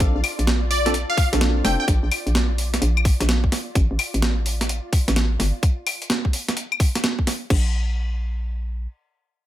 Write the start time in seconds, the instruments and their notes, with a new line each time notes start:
Already playing: string machine F4 D5
0.00 fm bass A#1, tine electric piano C4 D4 F4 A4, kick, closed hi-hat
0.16 fm bass A#1
0.24 open hi-hat, claves
0.39 fm bass A#1, closed hi-hat
0.47 snare, closed hi-hat
0.71 digital synth lead D5, open hi-hat
0.86 tine electric piano C4 D4 F4 A4, snare, closed hi-hat
0.94 closed hi-hat
1.10 digital synth lead F5
1.17 kick, open hi-hat
1.33 fm bass A#1, tine electric piano C4 D4 F4 A4, snare, closed hi-hat
1.41 snare, closed hi-hat
1.64 fm bass F1, tine electric piano C4 D4 F4 A4, digital synth lead G5, snare, open hi-hat
1.80 digital synth lead G5
1.88 fm bass A#1, kick, closed hi-hat
2.03 fm bass A#1
2.12 open hi-hat, claves
2.27 fm bass A#1, closed hi-hat
2.35 snare, closed hi-hat
2.58 open hi-hat
2.74 snare, closed hi-hat
2.82 fm bass A#1, closed hi-hat
2.97 claves
3.05 kick, open hi-hat
3.20 fm bass A#1, snare, closed hi-hat
3.29 snare, closed hi-hat
3.44 kick
3.52 snare, open hi-hat
3.75 fm bass A1, kick, closed hi-hat
3.91 fm bass A1
3.99 open hi-hat, claves
4.14 fm bass A1, closed hi-hat
4.22 snare, closed hi-hat
4.46 open hi-hat
4.61 snare, closed hi-hat
4.69 closed hi-hat
4.93 kick, open hi-hat
5.08 fm bass A1, snare, closed hi-hat
5.16 snare, closed hi-hat
5.40 fm bass G1, snare, open hi-hat
5.63 kick, closed hi-hat
5.87 open hi-hat, claves
6.02 closed hi-hat
6.10 snare, closed hi-hat
6.25 kick
6.33 open hi-hat
6.48 snare, closed hi-hat
6.57 closed hi-hat
6.72 claves
6.80 kick, open hi-hat
6.95 snare, closed hi-hat
7.04 snare, closed hi-hat
7.19 kick
7.27 snare, open hi-hat
7.50 fm bass A#1, kick, crash